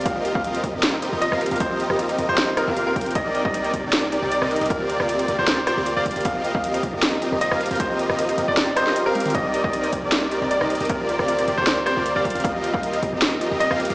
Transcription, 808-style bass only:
X:1
M:4/4
L:1/16
Q:"Swing 16ths" 1/4=155
K:Eb
V:1 name="808-style bass" clef=bass
E,,3 E,,3 E,, E,,4 E,,2 E,,2 E,, | E,,3 E,,3 E,, E,,4 E,,3 E,,2 | C,,3 C,,3 C,, C,,4 C,,2 C,,2 C,, | D,,3 D,,3 D,, D,,4 D,,2 D,,2 D,, |
E,,3 E,,3 E,, E,,4 E,,2 E,,2 E,, | E,,3 E,,3 E,, E,, z8 | C,,3 C,,3 C,, C,,4 C,,2 C,,2 C,, | D,,3 D,,3 D,, D,,4 D,,2 D,,2 D,, |
E,,3 E,,3 E,, E,,4 E,,2 E,,2 E,, |]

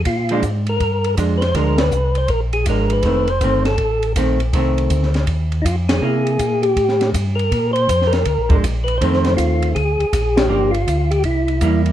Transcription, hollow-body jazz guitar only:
X:1
M:4/4
L:1/8
Q:"Swing" 1/4=161
K:Bb
V:1 name="Hollow-body jazz guitar"
z [F,_A,D] z4 [F,A,D] z | [F,_A,D] z4 z [F,A,D]2 | [E,A,C] z [E,A,C] z3 [E,A,C] z | [E,A,C]3 z4 z |
[B,=E]3 z4 z | z4 z [F,_A,D] z2 | [E,A,C]4 z4 | [F,B,D] z4 z [G,B,=E]2 |]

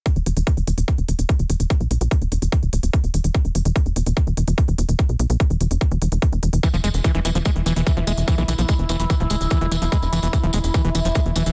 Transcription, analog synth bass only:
X:1
M:4/4
L:1/16
Q:1/4=146
K:E
V:1 name="Analog synth bass" clef=bass
z E,,, =F,,, E,,, z E,,, E,,, E,,, z E,,, E,,, E,,, z E,,, E,,, E,,, | z B,,, B,,, B,,, z E,,, E,,, E,,, z =D,,, D,,, D,,, z E,,, E,,, E,,, | z E,,, =F,,, E,,, z E,,, E,,, E,,, z E,,, E,,, E,,, z E,,, E,,, E,,, | z B,,, B,,, B,,, z E,,, E,,, E,,, z E,,, E,,, E,,, z E,,, E,,, E,,, |
z E,,, =F,,, E,,, z E,,, E,,, E,,, z E,,, E,,, E,,, z E,,, E,,, E,,, | z B,,, B,,, B,,, z E,,, E,,, E,,, z =D,,, D,,, D,,, z E,,, E,,, E,,, | z E,,, =F,,, E,,, z E,,, E,,, E,,, z E,,, E,,, E,,, z E,,, E,,, E,,, |]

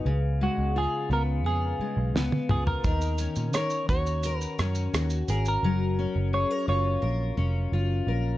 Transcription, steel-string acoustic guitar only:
X:1
M:4/4
L:1/16
Q:1/4=86
K:F#
V:1 name="Steel-string acoustic guitar"
C,2 G,2 E2 B,2 E2 G,2 B,2 E2 | [D,A]2 C2 A2 F2 A2 C2 F2 A2 | [F,A]2 C2 G A E2 A2 C2 E2 A2 |]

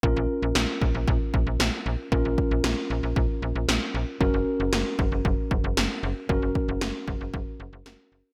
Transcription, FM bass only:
X:1
M:4/4
L:1/16
Q:1/4=115
K:Bbm
V:1 name="FM bass" clef=bass
B,,, B,,, z B,,, B,,, z B,,, B,,, B,,, z B,,, B,,, B,,, z B,,, z | B,,, B,,, z B,,, B,,, z B,,, B,,, B,,, z B,,, B,,, B,,, z B,,, z | G,,, G,,, z G,,, G,,, z G,,, G,,, G,,, z G,,, G,,, G,,, z G,,, z | G,,, G,,, z G,,, G,,, z G,,, G,,, G,,, z G,,, G,,, G,,, z G,,, z |]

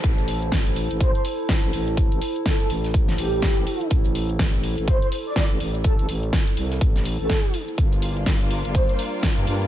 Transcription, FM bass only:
X:1
M:4/4
L:1/16
Q:"Swing 16ths" 1/4=124
K:Aphr
V:1 name="FM bass" clef=bass
A,,,4 A,,,3 A,,,2 z4 A,,, A,,,2- | A,,, A,,, z4 A,,,4 A,,,3 A,,, z2 | A,,,4 A,,,3 A,,,2 z4 A,,, A,,,2- | A,,, A,,, A,,,2 z2 C,,2 A,,,3 A,,, z4 |
G,,,4 G,,,3 G,,,2 z4 G,, G,,2 |]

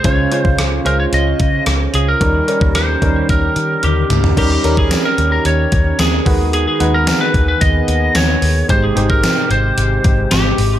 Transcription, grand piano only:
X:1
M:4/4
L:1/8
Q:1/4=111
K:Ebmix
V:1 name="Grand piano"
[A,DFc] [A,DFc]2 [A,DFc]3 z2 | [G,DEB] [G,DEB]2 [G,DEB]3 z2 | [G,DEB] [G,DEB]3 z3 [^G,^D^F=B]- | [^G,^D^F=B] [G,DFB]3 z4 |
[A,EGc] [A,EGc]3 z4 |]
V:2 name="Grand piano" clef=bass
D,3 z4 z | E,3 z4 z | E,3 z4 ^D,- | ^D,2 z6 |
A,,3 z4 z |]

